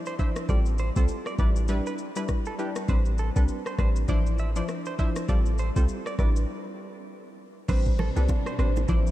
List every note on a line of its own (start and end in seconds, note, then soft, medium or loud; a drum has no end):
0.00 0.16 F3 medium
0.00 0.16 D4 medium
0.00 0.16 E4 medium
0.00 0.16 C5 medium
0.06 0.14 C5 medium
0.06 shaker soft
0.19 0.47 F3 medium
0.19 0.47 D4 medium
0.19 0.47 E4 medium
0.19 0.47 C5 medium
0.19 0.29 E5 medium
0.19 kick medium
0.19 shaker soft
0.36 cross-stick loud
0.36 shaker medium
0.49 0.91 A1 loud
0.49 0.71 G3 medium
0.49 0.71 C4 medium
0.49 0.71 F4 medium
0.49 0.71 A4 loud
0.49 0.59 D5 medium
0.49 kick loud
0.49 shaker medium
0.66 shaker soft
0.78 0.89 C5 medium
0.78 shaker medium
0.96 1.07 C2 medium
0.96 1.16 G3 medium
0.96 1.16 C4 medium
0.96 1.16 F4 medium
0.96 1.16 A4 medium
0.96 1.04 C5 medium
0.96 kick medium
0.96 shaker medium
1.08 shaker medium
1.26 1.34 D5 medium
1.26 cross-stick medium
1.26 shaker soft
1.39 1.80 A1 loud
1.39 1.61 G3 medium
1.39 1.61 D4 medium
1.39 1.61 E4 medium
1.39 1.62 B4 medium
1.39 1.49 D5 medium
1.39 kick medium
1.39 shaker medium
1.56 shaker medium
1.68 1.91 G3 medium
1.68 1.91 D4 medium
1.68 1.91 E4 medium
1.68 1.91 B4 loud
1.68 shaker medium
1.86 1.94 B4 medium
1.86 shaker medium
1.98 shaker soft
2.16 2.56 G3 medium
2.16 2.56 D4 medium
2.16 2.56 E4 medium
2.16 2.56 B4 medium
2.16 2.24 B4 medium
2.16 shaker loud
2.28 kick medium
2.28 cross-stick medium
2.28 shaker medium
2.45 2.54 A4 medium
2.45 shaker medium
2.58 2.87 G3 medium
2.58 2.87 D4 medium
2.58 2.87 E4 medium
2.58 2.69 G4 medium
2.58 2.87 B4 medium
2.58 shaker soft
2.76 cross-stick loud
2.76 shaker medium
2.88 3.30 A1 loud
2.88 3.11 G3 medium
2.88 3.11 C4 medium
2.88 3.11 D4 medium
2.88 3.11 B4 loud
2.88 2.99 C5 medium
2.88 kick loud
2.88 shaker medium
3.05 shaker soft
3.18 3.29 A4 medium
3.18 shaker medium
3.36 3.47 C2 medium
3.36 3.56 G3 medium
3.36 3.56 C4 medium
3.36 3.56 D4 medium
3.36 3.44 A4 medium
3.36 3.56 B4 medium
3.36 kick medium
3.36 shaker medium
3.48 shaker medium
3.66 3.74 C5 medium
3.66 cross-stick medium
3.66 shaker soft
3.78 4.05 A1 medium
3.78 4.01 G3 medium
3.78 4.01 C4 medium
3.78 4.01 D4 medium
3.78 4.01 B4 medium
3.78 3.89 C5 medium
3.78 kick loud
3.78 cross-stick medium
3.78 shaker medium
3.96 shaker medium
4.08 4.61 A1 loud
4.08 4.31 F3 medium
4.08 4.31 D4 medium
4.08 4.31 E4 medium
4.08 4.31 C5 loud
4.08 4.19 D5 medium
4.08 kick medium
4.08 shaker medium
4.26 shaker medium
4.38 4.49 E5 medium
4.38 shaker soft
4.56 4.96 F3 medium
4.56 4.96 D4 medium
4.56 4.96 E4 medium
4.56 4.96 C5 medium
4.56 4.64 D5 medium
4.56 shaker loud
4.68 cross-stick medium
4.68 shaker medium
4.86 4.94 C5 medium
4.86 shaker medium
4.98 5.27 F3 medium
4.98 5.27 D4 medium
4.98 5.27 E4 medium
4.98 5.27 C5 medium
4.98 5.09 E5 medium
4.98 kick medium
4.98 shaker soft
5.16 cross-stick loud
5.16 shaker medium
5.28 5.70 A1 loud
5.28 5.51 G3 medium
5.28 5.51 C4 medium
5.28 5.51 F4 medium
5.28 5.51 A4 loud
5.28 5.39 D5 medium
5.28 kick loud
5.28 shaker medium
5.45 shaker medium
5.58 5.69 C5 medium
5.58 shaker medium
5.76 5.87 C2 medium
5.76 5.96 G3 medium
5.76 5.96 C4 medium
5.76 5.96 F4 medium
5.76 5.96 A4 medium
5.76 5.84 C5 medium
5.76 kick medium
5.76 shaker medium
5.88 shaker medium
6.06 6.14 D5 medium
6.06 cross-stick medium
6.06 shaker soft
6.19 6.45 A1 loud
6.19 6.41 G3 medium
6.19 6.41 D4 medium
6.19 6.41 E4 medium
6.19 6.41 B4 medium
6.19 6.29 D5 medium
6.19 kick loud
6.19 cross-stick medium
6.19 shaker medium
6.36 shaker medium
7.68 8.10 A1 loud
7.68 8.88 B2 medium
7.68 8.88 C3 medium
7.68 7.91 G3 medium
7.68 8.88 G3 medium
7.68 7.91 C4 medium
7.68 7.91 D4 medium
7.68 8.88 D4 medium
7.68 7.91 B4 loud
7.68 7.95 C5 loud
7.68 7.79 C5 medium
7.68 kick loud
7.68 crash medium
7.68 low conga medium
7.68 shaker medium
7.86 kick medium
7.86 shaker soft
7.99 8.09 A4 medium
7.99 cross-stick medium
7.99 low bongo medium
7.99 low conga medium
8.16 8.27 C2 medium
8.16 8.36 G3 medium
8.16 8.36 C4 medium
8.16 8.36 D4 medium
8.16 8.24 A4 medium
8.16 8.36 B4 medium
8.16 8.27 D5 medium
8.16 low bongo medium
8.16 shaker medium
8.28 kick loud
8.28 high bongo medium
8.28 shaker medium
8.46 8.54 C5 medium
8.46 cross-stick medium
8.46 shaker soft
8.59 8.85 A1 medium
8.59 8.81 G3 medium
8.59 8.81 C4 medium
8.59 8.81 D4 medium
8.59 8.81 B4 medium
8.59 8.74 C5 medium
8.59 8.69 C5 medium
8.59 cross-stick medium
8.59 shaker medium
8.76 high bongo soft
8.76 low bongo medium
8.76 shaker soft
8.88 9.11 A1 loud
8.88 9.11 D3 medium
8.88 9.11 F3 loud
8.88 9.11 F3 medium
8.88 9.11 C4 medium
8.88 9.11 D4 medium
8.88 9.11 E4 medium
8.88 9.11 C5 loud
8.88 8.99 D5 medium
8.88 kick loud
8.88 low conga medium
8.88 shaker medium
9.07 shaker medium